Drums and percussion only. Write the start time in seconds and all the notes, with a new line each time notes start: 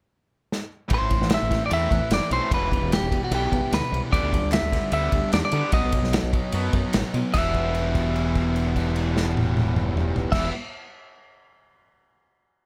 0.52 snare
0.90 kick, ride
1.10 kick, ride
1.22 snare
1.30 snare, ride
1.51 kick, snare, ride
1.71 ride
1.91 kick, ride
2.11 snare, ride
2.31 ride
2.51 kick, ride
2.72 kick, ride
2.92 snare, ride
3.12 kick, ride
3.32 ride
3.52 kick, ride
3.73 snare, ride
3.94 ride
4.13 kick, ride
4.33 kick, ride
4.52 snare, clap, ride
4.72 kick, snare, ride
4.92 ride
5.12 kick, ride
5.33 snare, clap, ride
5.52 ride
5.72 kick, ride
5.92 kick, ride
6.04 snare
6.13 snare, clap, ride
6.33 kick, ride
6.52 ride
6.73 kick, ride
6.93 snare, clap, ride
7.14 ride
7.34 kick, clap, crash
7.54 kick, crash
7.75 crash
7.95 kick, crash
8.16 crash
8.35 kick, crash
8.56 crash
8.76 kick, crash
8.96 crash
9.17 snare
9.37 high tom
9.57 high tom
9.76 mid tom
9.97 mid tom
10.16 floor tom
10.32 kick, snare, crash